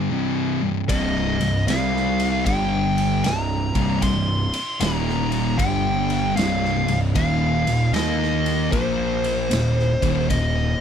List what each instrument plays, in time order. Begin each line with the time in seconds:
Already playing: distorted electric guitar G2 D3 G3
0.10 distorted electric guitar C2 G2 C3
0.62 distorted electric guitar C2 G2
0.88 picked electric bass C1, distorted electric guitar C2 G2 C3, lead electric guitar D#5, kick, ride
1.39 picked electric bass C1, distorted electric guitar C2 G2, ride
1.67 picked electric bass C2, distorted electric guitar C3 G3 C4, lead electric guitar F5, snare, ride
1.96 snare
2.20 ride
2.45 picked electric bass G1, distorted electric guitar G2 D3 G3, lead electric guitar G5, kick, ride
2.98 ride
3.24 picked electric bass C1, distorted electric guitar C2 G2, lead electric guitar A#5, snare, ride
3.75 picked electric bass C1, distorted electric guitar C2 G2 C3, kick, ride
4.02 picked electric bass C1, distorted electric guitar C2 G2, lead electric guitar C6, kick, ride
4.54 ride
4.80 picked electric bass D#1, distorted electric guitar D#2 A#2 D#3, lead electric guitar A#5, snare, ride
5.09 snare
5.32 ride
5.58 picked electric bass G1, distorted electric guitar G2 D3 G3, lead electric guitar G5, kick, ride
6.10 ride
6.36 picked electric bass C1, distorted electric guitar C2 G2 C3, lead electric guitar F5, snare, ride
6.65 snare
6.87 picked electric bass C1, distorted electric guitar C2 G2, ride
7.15 picked electric bass D#1, distorted electric guitar D#2 A#2 D#3, lead electric guitar F5, kick, ride
7.66 picked electric bass D#1, distorted electric guitar D#2 A#2, ride
7.92 picked electric bass D#2, distorted electric guitar D#3 A#3 D#4, lead electric guitar D#5, ride
7.96 snare
8.22 snare
8.46 ride
8.72 picked electric bass A#1, distorted electric guitar A#2 F3 A#3, lead electric guitar C5, kick, ride
9.24 ride
9.50 picked electric bass D#1, distorted electric guitar D#2 A#2, snare, ride
9.79 snare
10.02 picked electric bass D#1, distorted electric guitar D#2 A#2 D#3, kick, ride
10.30 picked electric bass D#1, distorted electric guitar D#2 A#2, lead electric guitar D#5, kick, ride